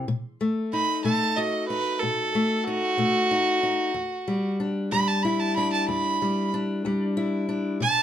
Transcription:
0.08 0.66 B2 medium
0.41 1.04 A3 medium
0.73 1.69 D#4 medium
0.73 1.04 B5 medium
1.04 1.62 B2 medium
1.04 2.34 A3 medium
1.04 1.38 A5 loud
1.37 3.91 F#4 medium
1.37 1.67 D#5 medium
1.68 2.66 D#4 medium
1.68 2.01 B4 loud
1.99 2.60 B2 medium
1.99 2.65 A4 medium
2.35 2.97 A3 medium
2.64 3.30 D#4 medium
2.64 4.54 F#4 loud
2.97 3.56 B2 medium
2.97 3.91 A3 medium
3.31 3.62 D#4 medium
3.63 3.91 D#4 medium
3.94 4.52 E2 medium
4.28 4.92 G3 medium
4.60 5.56 D4 medium
4.91 5.50 E2 medium
4.91 6.21 G3 medium
4.91 5.09 B5 loud
5.08 5.24 A5 loud
5.23 7.16 E4 medium
5.23 5.41 B5 medium
5.40 5.54 A5 loud
5.56 6.53 D4 medium
5.56 5.71 B5 loud
5.73 5.87 A5 medium
5.88 6.46 E2 medium
5.88 6.50 B5 medium
6.22 6.85 G3 medium
6.54 7.48 D4 medium
6.85 7.43 E2 medium
6.85 7.82 G3 medium
7.17 7.81 E4 medium
7.49 7.77 D4 medium
7.80 8.03 B2 medium
7.80 8.03 A5 loud

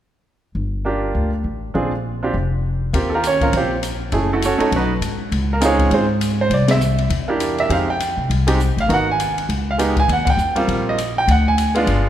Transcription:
0.55 1.12 G1 medium
0.85 1.29 A#3 soft
0.85 1.29 D4 soft
0.85 1.30 F4 soft
0.85 1.30 G4 soft
1.15 1.42 D2 medium
1.44 1.72 A1 medium
1.74 2.31 A#1 medium
1.74 1.90 C4 soft
1.74 1.91 D4 soft
1.74 1.91 F4 soft
1.74 1.91 G#4 soft
2.23 2.33 C4 soft
2.23 2.33 D4 soft
2.23 2.33 F4 soft
2.23 2.34 G4 medium
2.34 2.90 F1 medium
2.93 3.50 D#2 medium
2.93 3.10 A#3 soft
2.93 3.10 C4 soft
2.93 3.10 F4 soft
2.93 3.11 G4 soft
2.93 kick soft
2.93 ride soft
3.10 3.11 A4 soft
3.14 3.25 A#3 medium
3.14 3.25 F4 medium
3.14 3.25 G4 soft
3.14 3.25 A#4 medium
3.24 3.53 C#4 medium
3.24 3.53 C#5 medium
3.24 hi-hat pedal medium
3.24 ride medium
3.41 3.52 A#3 medium
3.41 3.52 C4 soft
3.41 3.53 F4 soft
3.41 3.53 A#4 medium
3.41 kick medium
3.41 ride soft
3.53 4.10 A#1 medium
3.53 3.72 C5 medium
3.53 kick soft
3.53 ride soft
3.57 3.72 C4 medium
3.57 3.73 F4 soft
3.57 3.73 G4 soft
3.83 hi-hat pedal soft
3.83 ride medium
4.12 4.57 F#1 medium
4.12 4.29 A3 soft
4.12 4.29 C#4 soft
4.12 4.29 E4 soft
4.12 4.29 G#4 soft
4.12 kick soft
4.12 ride soft
4.33 4.44 A3 soft
4.33 4.44 E4 medium
4.33 4.44 F#4 soft
4.33 4.43 A4 medium
4.42 4.58 C#4 medium
4.42 4.72 F#4 medium
4.42 4.59 A4 medium
4.42 4.72 C#5 medium
4.42 hi-hat pedal medium
4.42 ride medium
4.58 4.70 A3 medium
4.58 4.70 C#4 soft
4.58 4.71 D#4 medium
4.58 4.71 A4 medium
4.58 muted upright bass stroke soft
4.58 ride soft
4.72 5.00 B1 medium
4.72 kick soft
4.72 ride soft
4.76 4.92 B3 soft
4.76 4.91 D#4 soft
4.76 4.92 F#4 soft
4.76 4.92 B4 medium
5.01 5.29 G#2 medium
5.01 hi-hat pedal soft
5.01 ride medium
5.32 5.88 C#2 medium
5.32 kick soft
5.32 ride soft
5.53 5.63 A#3 medium
5.53 5.63 A#4 medium
5.61 6.05 G#3 medium
5.61 5.92 C4 medium
5.61 6.06 D#4 soft
5.61 5.64 F4 medium
5.61 snare soft
5.61 hi-hat pedal medium
5.61 ride medium
5.65 5.91 C#4 medium
5.65 5.91 F4 medium
5.65 5.91 G#4 medium
5.65 5.91 C#5 medium
5.79 kick soft
5.79 ride soft
5.91 6.47 G#2 medium
5.91 6.04 C4 medium
5.91 6.04 F4 soft
5.91 6.04 G#4 soft
5.91 6.04 C5 medium
5.91 kick soft
5.91 ride soft
6.21 hi-hat pedal soft
6.21 ride medium
6.41 6.52 C5 medium
6.50 7.07 C2 medium
6.50 6.70 D5 medium
6.50 kick soft
6.50 ride medium
6.68 7.09 E5 medium
6.68 snare medium
6.68 ride medium
6.81 hi-hat pedal medium
6.98 ride soft
7.10 7.67 E2 medium
7.10 kick soft
7.10 ride medium
7.28 7.67 A#3 medium
7.28 7.67 D4 medium
7.28 7.68 E4 soft
7.28 7.68 G4 medium
7.40 hi-hat pedal soft
7.40 ride medium
7.58 7.71 E5 medium
7.58 ride soft
7.69 8.14 F2 medium
7.69 7.86 G#3 soft
7.69 7.86 C4 soft
7.69 7.86 D#4 soft
7.69 7.86 G4 soft
7.69 7.88 F5 medium
7.69 kick soft
7.69 ride medium
7.90 8.28 G5 medium
8.00 hi-hat pedal soft
8.00 ride medium
8.17 8.28 C3 medium
8.30 8.74 C2 medium
8.30 kick soft
8.30 ride soft
8.47 8.58 G#3 medium
8.47 8.58 C4 medium
8.47 8.58 D#4 medium
8.47 8.58 G4 medium
8.47 ride medium
8.60 hi-hat pedal medium
8.77 8.88 A1 medium
8.77 8.90 F5 medium
8.77 ride soft
8.88 9.46 G#1 medium
8.88 9.05 A#3 soft
8.88 9.05 B3 soft
8.88 9.05 D#4 soft
8.88 9.05 F#4 soft
8.88 kick soft
8.88 ride soft
8.94 9.09 F#5 medium
9.11 9.48 G#5 medium
9.20 hi-hat pedal medium
9.20 ride medium
9.38 ride soft
9.49 10.05 C#2 medium
9.49 kick soft
9.49 ride soft
9.71 9.96 F5 medium
9.78 9.94 G#3 soft
9.78 9.95 B3 soft
9.78 9.95 D#4 soft
9.78 9.95 G4 medium
9.78 hi-hat pedal soft
9.78 ride medium
9.97 10.10 G#5 medium
9.97 kick soft
9.97 ride soft
10.08 10.36 D#2 medium
10.08 kick soft
10.08 ride soft
10.13 10.24 F#5 medium
10.27 10.56 G5 medium
10.27 kick medium
10.27 ride medium
10.37 10.65 E2 medium
10.37 hi-hat pedal medium
10.56 10.95 G3 medium
10.56 10.95 A#3 soft
10.56 10.96 C4 medium
10.56 10.96 F4 medium
10.56 ride soft
10.68 11.24 A#1 medium
10.68 kick soft
10.68 ride soft
10.89 11.15 D#5 medium
10.98 hi-hat pedal soft
10.98 ride medium
11.18 11.28 G5 medium
11.27 11.84 D2 medium
11.27 11.47 F#5 medium
11.27 kick soft
11.27 ride medium
11.48 11.74 G#5 medium
11.58 hi-hat pedal soft
11.58 ride medium
11.75 12.09 G#3 medium
11.75 12.09 B3 medium
11.75 12.09 D4 medium
11.75 12.09 F4 medium
11.75 ride soft
11.87 12.09 G1 medium
11.87 kick soft
11.87 ride soft

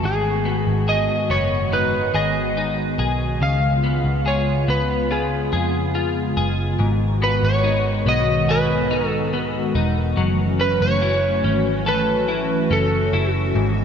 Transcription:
0.00 0.64 G#1 medium
0.00 3.41 G#2 medium
0.00 3.38 D#3 medium
0.00 6.75 G#3 medium
0.00 3.38 B3 medium
0.00 0.12 C#4 medium
0.00 0.12 E4 medium
0.00 3.38 F#4 medium
0.00 0.12 A4 medium
0.05 0.91 G#4 medium
0.45 1.30 B3 medium
0.67 1.07 G#1 medium
0.88 2.14 G#4 medium
0.88 1.32 D#5 medium
1.30 2.11 F#1 medium
1.30 3.83 B3 medium
1.30 1.74 C#5 medium
1.72 2.56 D#4 soft
1.72 2.16 B4 medium
2.14 2.95 G#1 medium
2.14 2.99 G#4 medium
2.14 2.96 D#5 medium
2.57 3.50 D#4 medium
2.99 3.39 B1 medium
2.99 4.25 G#4 medium
3.41 4.01 C#2 medium
3.41 6.80 C#3 medium
3.41 6.77 C#3 medium
3.41 6.77 B3 medium
3.41 6.77 F4 medium
3.41 4.29 F5 medium
3.84 4.68 B3 medium
4.04 4.65 C#2 medium
4.26 5.52 G#4 medium
4.26 4.70 C#5 medium
4.68 5.49 C#2 medium
4.68 7.21 B3 medium
4.68 5.13 B4 medium
5.11 5.94 F4 medium
5.11 5.92 G#4 medium
5.53 6.33 F2 medium
5.53 6.37 G#4 medium
5.95 6.88 F4 medium
6.37 6.77 F#1 medium
6.37 8.49 G#4 medium
6.79 7.39 G#1 loud
6.79 10.17 G#2 medium
6.79 10.14 D#3 medium
6.79 10.14 G#3 medium
6.79 10.14 B3 medium
6.79 10.14 F#4 medium
7.22 8.05 B3 medium
7.22 7.44 B4 medium
7.43 8.03 G#1 medium
7.43 8.08 C#5 medium
7.64 8.90 D#4 medium
8.06 9.71 B1 medium
8.06 9.32 B3 medium
8.06 8.51 D#5 loud
8.49 10.26 G#4 medium
8.49 9.08 B4 medium
8.91 9.74 D#4 medium
9.08 9.30 A4 medium
9.33 10.26 B3 medium
9.75 10.15 E1 loud
9.75 10.26 D#4 medium
10.17 10.78 F#1 loud
10.17 13.52 E3 medium
10.17 13.58 F#3 medium
10.17 13.52 A3 medium
10.17 13.52 C#4 medium
10.17 13.85 F#4 medium
10.59 11.43 C#4 medium
10.59 10.82 B4 medium
10.81 11.41 F#1 loud
10.81 11.83 C#5 loud
11.02 12.27 E4 medium
11.44 12.67 G#1 medium
11.44 12.70 C#4 medium
11.86 13.64 A4 medium
11.86 12.75 B4 loud
12.28 13.12 E4 medium
12.71 13.11 F#1 medium
12.71 13.64 C#4 medium
12.71 13.31 A4 medium
13.13 13.53 F#1 loud
13.13 13.64 E4 medium
13.55 13.85 G#1 loud
13.55 13.85 G#2 medium
13.55 13.85 D#3 medium
13.55 13.85 G#3 medium
13.55 13.85 B3 medium

